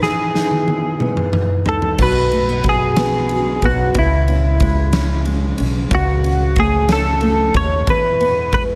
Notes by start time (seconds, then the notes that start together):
Already playing: B3 D#4
0.02 E3 G#4, snare
0.35 D#4, snare
0.51 high tom
0.68 G#4, high tom
1.00 B3, mid tom
1.17 mid tom
1.33 mid tom
1.66 D#4 A4, floor tom
1.82 floor tom
1.98 B1 B2, kick, crash
2.02 B4
2.32 A3, ride
2.49 B3
2.64 F#3, kick, ride
2.69 G#4
2.96 B3, snare, ride
3.29 F#3, ride
3.62 B1 B3 F#4, kick, ride
3.94 C#2 C#3, kick, ride
3.99 E4
4.28 C#4, ride
4.60 G#3, kick, ride
4.93 C#4, snare, ride
5.25 G#3, ride
5.58 B1 C#4, ride
5.91 C#2 C#3, kick, ride
5.95 F#4
6.24 C#4, ride
6.56 A3 G#4, kick, ride
6.89 C#4 A4, snare, ride
7.21 A3, ride
7.54 D#2 C#4 C#5, kick, ride
7.87 E2 E3 B4, kick, ride
8.20 B3, ride
8.52 G#3 B4, kick, ride